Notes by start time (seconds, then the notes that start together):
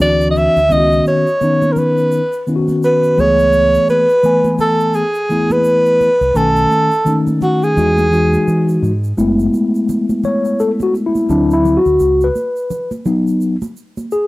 0.00 D2 E3 C4 D4 F#4 D5, shaker
0.21 shaker
0.31 D#5
0.36 E5, low conga, shaker
0.56 D2, shaker
0.69 C#2 D#3 B3 C#4 E4 D#5, shaker
0.78 F#4
0.92 shaker
1.06 C#5, high conga, shaker
1.27 shaker
1.41 D#3 B3 C#4 D#4, low conga, shaker
1.62 high conga, shaker
1.72 A#4, low conga, shaker
1.78 B4
1.97 shaker
2.12 shaker
2.33 shaker
2.47 D#3 B3 C#4 E4, shaker
2.56 F#4
2.68 high conga, shaker
2.83 B4, shaker
3.03 shaker
3.17 C#2 E3 A3 B3 G#4 C#5, low conga, shaker
3.39 shaker
3.53 shaker
3.74 shaker
3.89 B4, high conga, shaker
4.09 shaker
4.23 E3 A3 B3 G#5, low conga, shaker
4.44 high conga, shaker
4.59 A4, low conga, shaker
4.80 shaker
4.94 G#4, shaker
5.14 shaker
5.29 E3 A3 B3 E4, shaker
5.50 B4, high conga, shaker
5.64 shaker
5.85 shaker
6.01 low conga, shaker
6.21 C2, shaker
6.34 B1 D#3 A3 C#4 A4 G#5, shaker
6.56 shaker
6.71 high conga, shaker
6.91 shaker
7.05 D#3 A3 C#4 D#4, high conga, low conga, shaker
7.27 high conga, shaker
7.42 F#4, low conga, shaker
7.63 G#4, shaker
7.76 E2 E3 G#3 D#4 F#4, shaker
7.98 high conga, shaker
8.11 E3 G#3 D#4 F#4, shaker
8.33 high conga, shaker
8.47 E3, shaker
8.69 shaker
8.82 G#2, low conga, shaker
9.04 shaker
9.17 F#1 G#3 A3 B3 E4, shaker
9.39 shaker
9.54 high conga, shaker
9.75 shaker
9.89 low conga, shaker
10.09 high conga, shaker
10.24 C#5, low conga, shaker
10.45 shaker
10.59 A4, shaker
10.80 F#4, high conga, shaker
10.95 shaker
11.06 E4
11.15 high conga, shaker
11.29 D2 F#3 C4 D4 E4, shaker
11.51 E4, shaker
11.65 low conga, shaker
11.77 F#4
11.86 D2, shaker
12.00 C#2, shaker
12.21 B4, shaker
12.36 high conga, shaker
12.56 shaker
12.70 low conga, shaker
12.91 high conga, shaker
13.05 F#3 B3 D#4, low conga, shaker
13.27 shaker
13.41 shaker
13.62 high conga, shaker
13.77 shaker
13.97 high conga, shaker
14.11 G#4, shaker